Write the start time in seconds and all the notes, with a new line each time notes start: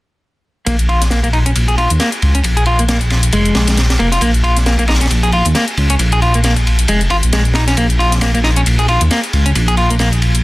0.66 A#1 A#3, kick, closed hi-hat, ride
0.79 closed hi-hat
0.89 F4, ride
1.02 snare, closed hi-hat
1.10 A#3, snare, closed hi-hat, ride
1.23 A#3, kick, closed hi-hat
1.33 D#4, ride
1.46 C#4, closed hi-hat
1.56 A#1, closed hi-hat, ride
1.68 G#4, closed hi-hat
1.78 F4, kick, ride
1.90 D#2, closed hi-hat, ride
2.00 A#3, snare, closed hi-hat, ride
2.12 closed hi-hat
2.22 C#2, ride
2.35 C#4, closed hi-hat
2.44 A#1, kick, closed hi-hat, ride
2.57 G#4, closed hi-hat
2.66 F4, ride
2.79 A#3, closed hi-hat
2.89 A#3, snare, closed hi-hat, ride
3.01 kick, closed hi-hat
3.10 snare, ride
3.23 closed hi-hat, ride
3.33 F1 G#3, closed hi-hat, ride
3.45 closed hi-hat
3.55 A#1, snare, ride
3.67 snare, closed hi-hat, ride
3.77 snare, closed hi-hat, ride
3.90 snare, closed hi-hat, ride
3.99 F1 A#3, ride
4.12 F4, snare, closed hi-hat
4.21 A#1 A#3, kick, closed hi-hat, ride
4.34 closed hi-hat
4.44 F4, ride
4.57 snare, closed hi-hat
4.66 A#3, snare, closed hi-hat, ride
4.78 A#3, kick, closed hi-hat
4.88 D#4, snare, ride
4.94 snare, ride
5.00 C#4, snare, closed hi-hat, ride
5.05 snare, ride
5.10 A#1, closed hi-hat, ride
5.23 G#4, closed hi-hat
5.32 F4, kick, ride
5.45 D#2, closed hi-hat, ride
5.55 A#3, snare, closed hi-hat, ride
5.68 closed hi-hat
5.77 C#2, ride
5.90 C#4, closed hi-hat
5.99 A#1, kick, closed hi-hat, ride
6.12 G#4, closed hi-hat
6.22 F4, ride
6.34 A#3, closed hi-hat
6.44 A#3, snare, closed hi-hat, ride
6.56 kick, closed hi-hat
6.67 ride
6.79 closed hi-hat, ride
6.88 F1 G#3, closed hi-hat, ride
7.01 closed hi-hat
7.10 G#1 F4, kick, ride
7.23 A#1, closed hi-hat
7.33 A#1 G#3, snare, closed hi-hat, ride
7.45 closed hi-hat
7.54 D#4, snare, ride
7.68 C#4, snare, closed hi-hat
7.77 A#1 A#3, kick, closed hi-hat, ride
7.90 closed hi-hat
7.99 F4, ride
8.12 snare, closed hi-hat
8.21 A#3, snare, closed hi-hat, ride
8.34 A#3, kick, closed hi-hat
8.44 D#4, snare, ride
8.56 C#4, closed hi-hat
8.66 A#1, closed hi-hat, ride
8.79 G#4, closed hi-hat
8.88 F4, kick, ride
9.01 D#2, closed hi-hat, ride
9.11 A#3, snare, closed hi-hat, ride
9.24 closed hi-hat
9.33 C#2, ride
9.46 C#4, closed hi-hat
9.55 A#1, kick, closed hi-hat, ride
9.68 G#4, closed hi-hat
9.77 F4, ride
9.90 A#3, closed hi-hat
9.99 A#3, snare, closed hi-hat, ride
10.12 kick, closed hi-hat
10.22 ride
10.35 closed hi-hat, ride